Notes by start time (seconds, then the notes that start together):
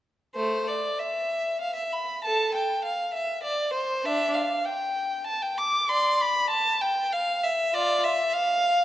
0.35 A3 C5
0.68 D5
0.99 E5
1.61 F5
1.76 E5
1.93 B5
2.25 A4 A5
2.55 G5
2.85 F5
3.14 E5
3.44 D5
3.74 C5
4.04 D4 E5
4.34 F5
4.65 G5
5.27 A5
5.42 G5
5.58 D6
5.89 D5 C6
6.21 B5
6.50 A5
6.81 G5
7.13 F5
7.44 E5
7.73 F4 D5
8.04 E5
8.34 F5